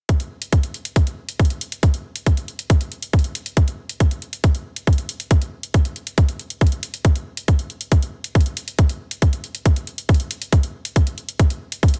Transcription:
0.09 kick, closed hi-hat
0.20 closed hi-hat
0.42 closed hi-hat
0.53 kick, closed hi-hat
0.63 closed hi-hat
0.74 closed hi-hat
0.85 closed hi-hat
0.96 kick, closed hi-hat
1.07 closed hi-hat
1.29 closed hi-hat
1.40 kick, closed hi-hat
1.45 closed hi-hat
1.50 closed hi-hat
1.61 closed hi-hat
1.72 closed hi-hat
1.83 kick, closed hi-hat
1.94 closed hi-hat
2.16 closed hi-hat
2.26 kick, closed hi-hat
2.37 closed hi-hat
2.48 closed hi-hat
2.59 closed hi-hat
2.70 kick, closed hi-hat
2.81 closed hi-hat
2.92 closed hi-hat
3.03 closed hi-hat
3.13 kick, closed hi-hat
3.19 closed hi-hat
3.24 closed hi-hat
3.35 closed hi-hat
3.46 closed hi-hat
3.57 kick, closed hi-hat
3.68 closed hi-hat
3.89 closed hi-hat
4.00 kick, closed hi-hat
4.11 closed hi-hat
4.22 closed hi-hat
4.33 closed hi-hat
4.44 kick, closed hi-hat
4.55 closed hi-hat
4.76 closed hi-hat
4.87 kick, closed hi-hat
4.93 closed hi-hat
4.98 closed hi-hat
5.09 closed hi-hat
5.20 closed hi-hat
5.31 kick, closed hi-hat
5.42 closed hi-hat
5.63 closed hi-hat
5.74 kick, closed hi-hat
5.85 closed hi-hat
5.96 closed hi-hat
6.07 closed hi-hat
6.18 kick, closed hi-hat
6.29 closed hi-hat
6.39 closed hi-hat
6.50 closed hi-hat
6.61 kick, closed hi-hat
6.67 closed hi-hat
6.72 closed hi-hat
6.83 closed hi-hat
6.94 closed hi-hat
7.05 kick, closed hi-hat
7.16 closed hi-hat
7.37 closed hi-hat
7.48 kick, closed hi-hat
7.59 closed hi-hat
7.70 closed hi-hat
7.81 closed hi-hat
7.92 kick, closed hi-hat
8.03 closed hi-hat
8.24 closed hi-hat
8.35 kick, closed hi-hat
8.41 closed hi-hat
8.46 closed hi-hat
8.57 closed hi-hat
8.68 closed hi-hat
8.79 kick, closed hi-hat
8.89 closed hi-hat
9.11 closed hi-hat
9.22 kick, closed hi-hat
9.33 closed hi-hat
9.44 closed hi-hat
9.55 closed hi-hat
9.66 kick, closed hi-hat
9.76 closed hi-hat
9.87 closed hi-hat
9.98 closed hi-hat
10.09 kick, closed hi-hat
10.14 closed hi-hat
10.20 closed hi-hat
10.31 closed hi-hat
10.42 closed hi-hat
10.52 kick, closed hi-hat
10.63 closed hi-hat
10.85 closed hi-hat
10.96 kick, closed hi-hat
11.07 closed hi-hat
11.18 closed hi-hat
11.29 closed hi-hat
11.39 kick, closed hi-hat
11.50 closed hi-hat
11.72 closed hi-hat
11.83 kick, closed hi-hat
11.88 closed hi-hat
11.94 closed hi-hat

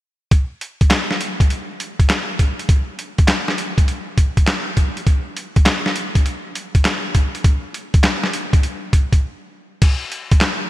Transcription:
0.31 kick, closed hi-hat
0.61 closed hi-hat
0.81 kick, closed hi-hat
0.90 snare, clap, closed hi-hat
1.11 snare
1.21 closed hi-hat
1.40 kick, closed hi-hat
1.50 closed hi-hat
1.80 closed hi-hat
2.00 kick, closed hi-hat
2.09 snare, clap, closed hi-hat
2.39 kick, closed hi-hat
2.59 closed hi-hat
2.69 kick, closed hi-hat
2.99 closed hi-hat
3.18 kick, closed hi-hat
3.28 snare, clap, closed hi-hat
3.48 snare
3.58 closed hi-hat
3.78 kick, closed hi-hat
3.88 closed hi-hat
4.18 kick, closed hi-hat
4.37 kick, closed hi-hat
4.47 snare, clap, closed hi-hat
4.77 kick, closed hi-hat
4.97 closed hi-hat
5.07 kick, closed hi-hat
5.37 closed hi-hat
5.56 kick, closed hi-hat
5.66 snare, clap, closed hi-hat
5.86 snare
5.96 closed hi-hat
6.15 kick, closed hi-hat
6.26 closed hi-hat
6.55 closed hi-hat
6.75 kick, closed hi-hat
6.85 snare, clap, closed hi-hat
7.15 kick, closed hi-hat
7.35 closed hi-hat
7.44 kick, closed hi-hat
7.74 closed hi-hat
7.94 kick, closed hi-hat
8.03 snare, clap, closed hi-hat
8.24 snare
8.33 closed hi-hat
8.53 kick, closed hi-hat
8.63 closed hi-hat
8.93 kick, closed hi-hat
9.13 kick, closed hi-hat
9.82 kick, closed hi-hat, crash
10.12 closed hi-hat
10.31 kick, closed hi-hat
10.41 snare, clap, closed hi-hat

